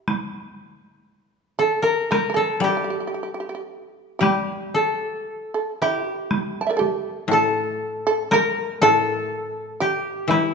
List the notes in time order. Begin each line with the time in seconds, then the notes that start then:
0.08 taiko rim, taiko high
1.59 A4
1.82 A#4
2.11 A#4, taiko rim, taiko high
2.30 A#4
2.34 A4
2.60 G3 G4
2.68 G4
2.77 G4
2.84 G4
2.90 G4
3.00 G4
3.07 G4
3.14 G4
3.23 G4
3.34 G4
3.40 G4
3.49 G4
3.55 G4
4.19 G3 G4, taiko rim, taiko high
4.74 A4
5.54 A4
5.82 E4 G4
6.12 G4
6.31 taiko rim, taiko high
6.61 G5 A5
6.67 A#4 D5 E5
6.77 G4 A4
6.81 taiko high
7.28 A2 A4
7.33 A4
8.07 A4
8.31 A#4, taiko rim, taiko high
8.82 A2 A4
9.80 G4
10.28 E3 E4, taiko rim, taiko high